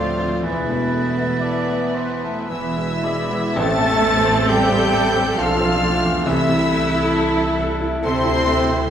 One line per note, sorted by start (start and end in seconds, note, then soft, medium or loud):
0.00 0.28 D2 medium
0.00 0.41 D2 medium
0.00 0.47 A2 soft
0.00 0.19 F3 medium
0.00 0.41 F3 medium
0.00 0.33 A3 medium
0.00 0.44 C4 medium
0.00 0.44 F4 medium
0.00 0.43 C5 medium
0.00 0.44 D5 medium
0.00 0.44 F5 medium
0.00 0.42 A6 medium
0.17 0.43 A3 medium
0.17 0.44 C4 soft
0.43 1.27 E1 medium
0.43 2.46 E2 medium
0.43 1.26 E2 medium
0.43 0.67 E3 medium
0.43 3.05 E3 medium
0.43 3.35 B3 medium
0.43 2.50 E4 medium
0.43 1.31 B4 medium
0.43 2.47 B4 medium
0.43 2.47 E5 medium
0.43 2.27 A6 medium
0.68 1.08 B2 medium
0.68 0.93 A3 medium
0.92 1.18 E3 soft
0.92 1.33 A3 soft
1.17 1.43 A3 soft
1.17 1.58 B3 medium
1.41 1.69 E3 medium
1.41 1.85 A4 medium
1.41 1.97 D5 medium
1.68 1.96 A3 medium
1.68 2.12 B3 medium
1.95 2.23 E3 medium
1.95 2.40 B4 medium
1.95 2.50 C5 medium
2.22 2.50 A3 medium
2.22 2.50 A5 soft
2.50 3.40 E1 medium
2.50 3.53 E2 medium
2.50 3.40 E2 medium
2.50 2.75 E3 medium
2.50 3.53 E3 medium
2.50 3.59 E4 medium
2.50 3.06 B4 medium
2.50 3.53 E5 medium
2.50 3.59 E5 medium
2.50 3.53 E6 medium
2.76 3.21 B2 soft
2.76 3.05 G#3 medium
3.03 3.31 E3 soft
3.03 3.46 G#3 medium
3.03 3.57 D5 medium
3.30 3.56 G#3 medium
3.30 3.56 B3 medium
3.55 5.34 A1 loud
3.55 5.35 A1 medium
3.55 3.93 A2 medium
3.55 3.93 E3 medium
3.55 4.50 A3 loud
3.55 3.93 A3 medium
3.55 5.34 C4 loud
3.55 3.93 C4 medium
3.55 6.22 A4 loud
3.55 4.51 A4 loud
3.55 4.48 A5 loud
3.55 4.49 A5 loud
3.55 4.49 A6 loud
3.78 4.16 E2 medium
4.01 4.39 A3 medium
4.24 4.62 C4 medium
4.48 5.39 G3 loud
4.48 5.38 G4 loud
4.48 5.40 G4 medium
4.48 4.85 A4 medium
4.48 5.37 G5 medium
4.48 5.37 G5 loud
4.48 5.39 G6 loud
4.69 5.06 C4 medium
4.93 5.29 A4 medium
5.16 5.52 C4 medium
5.38 6.27 B1 medium
5.38 6.27 F3 medium
5.38 6.27 D4 medium
5.38 6.29 F4 medium
5.38 6.10 F4 medium
5.38 5.74 A4 medium
5.38 6.27 F5 medium
5.38 6.29 F5 medium
5.38 6.27 F6 loud
5.60 5.96 C4 medium
5.83 6.19 A3 medium
6.04 6.27 E2 medium
6.26 8.00 C2 medium
6.26 8.01 C2 medium
6.26 6.60 C3 medium
6.26 6.60 E3 medium
6.26 7.58 E3 medium
6.26 6.61 A3 medium
6.26 6.61 C4 medium
6.26 7.57 E4 medium
6.26 8.03 E4 loud
6.26 7.60 E4 medium
6.26 8.01 A4 medium
6.26 7.57 E5 medium
6.26 7.60 E5 medium
6.26 7.57 E6 loud
6.49 6.84 C3 medium
6.73 7.07 A3 medium
6.94 7.29 E4 medium
7.16 7.51 A4 medium
7.36 7.72 E4 medium
7.59 7.95 A4 medium
7.80 8.17 E4 medium
8.03 8.90 D2 medium
8.03 8.90 C3 loud
8.03 8.90 C4 loud
8.03 8.90 E4 medium
8.03 8.39 A4 medium
8.03 8.90 A4 medium
8.03 8.90 C5 medium
8.03 8.90 C6 loud
8.24 8.61 E4 medium
8.46 8.84 A3 medium
8.69 8.90 C3 medium